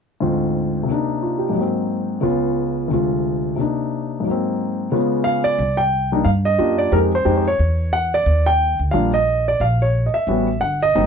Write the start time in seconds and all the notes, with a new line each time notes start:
0.20 D2 G#2 C4 F4
0.83 C3 A#3
0.91 D4 D#4
1.22 F4
1.39 G4
1.50 G#2 F#3
1.57 A#3
1.61 C4
2.21 C#2 C#3 B3 F4
2.88 D2 C3 G#3
2.93 F4
3.56 C3 A#3 D4
3.61 D#4
4.20 G#2 F#3
4.28 A#3 C4
4.92 C#3 G#3 B3 F4
5.24 F5
5.44 D5
5.59 C2
5.77 G5
6.12 G3 A#3 D4 D#4
6.25 G2 F5
6.45 D#5
6.58 F#2 A#3 D4 F4 G4
6.78 D5
6.92 F2 G#3 C4 D#4 G4 A#4
7.15 C5
7.25 F2 G#3 C4 D#4 G4
7.37 C5
7.48 C#5
7.59 E2
7.93 F#5
8.14 D5
8.26 D#2
8.46 G5
8.79 D2
8.91 A#1 G3 A#3 D4 F4 F5
9.14 D#5
9.48 D5
9.60 A#1 F5
9.82 C#5
10.06 D#5
10.14 E5, muted upright bass stroke
10.27 A1 G3 B3 C#4 F#4
10.61 G1 F#5
10.82 D#5
10.95 G#1 G3 A#3 C4 D#4